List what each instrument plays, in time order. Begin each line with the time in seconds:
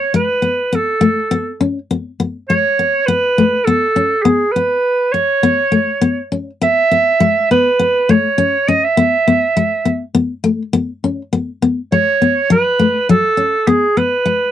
Already playing: clarinet C#5
0.14 steel-string acoustic guitar G#3, clarinet B4
0.42 steel-string acoustic guitar B3
0.73 steel-string acoustic guitar B3, clarinet A4
1.01 steel-string acoustic guitar A3
1.31 steel-string acoustic guitar B3
1.61 steel-string acoustic guitar C#4
1.91 steel-string acoustic guitar B3
2.20 steel-string acoustic guitar B3
2.49 steel-string acoustic guitar G#3, clarinet C#5
2.79 steel-string acoustic guitar B3
3.06 steel-string acoustic guitar B3, clarinet B4
3.38 steel-string acoustic guitar A3
3.65 steel-string acoustic guitar B3, clarinet A4
3.96 steel-string acoustic guitar C#4
4.22 steel-string acoustic guitar B3, clarinet G#4
4.52 clarinet B4
4.56 steel-string acoustic guitar B3
5.12 clarinet C#5, muted steel-string acoustic guitar stroke
5.43 steel-string acoustic guitar B3
5.72 steel-string acoustic guitar A3
6.01 steel-string acoustic guitar B3
6.32 steel-string acoustic guitar C#4
6.62 steel-string acoustic guitar B3, clarinet E5
6.91 steel-string acoustic guitar B3
7.20 steel-string acoustic guitar G#3
7.51 steel-string acoustic guitar B3, clarinet B4
7.79 steel-string acoustic guitar B3
8.09 steel-string acoustic guitar A3, clarinet C#5
8.38 steel-string acoustic guitar C#4
8.68 steel-string acoustic guitar C#4, clarinet D#5
8.84 clarinet E5
8.97 steel-string acoustic guitar B3
9.28 steel-string acoustic guitar B3
9.57 steel-string acoustic guitar G#3
9.85 steel-string acoustic guitar B3
10.15 steel-string acoustic guitar B3
10.44 steel-string acoustic guitar A3
10.73 steel-string acoustic guitar B3
11.04 steel-string acoustic guitar C#4
11.33 steel-string acoustic guitar B3
11.62 steel-string acoustic guitar B3
11.92 steel-string acoustic guitar G#3, clarinet C#5
12.22 steel-string acoustic guitar B3
12.50 steel-string acoustic guitar F#3, clarinet B4
12.79 steel-string acoustic guitar A3
13.09 steel-string acoustic guitar F#3, clarinet A4
13.37 steel-string acoustic guitar C#4
13.67 steel-string acoustic guitar B3, clarinet G#4
13.97 steel-string acoustic guitar B3, clarinet B4
14.26 steel-string acoustic guitar G#3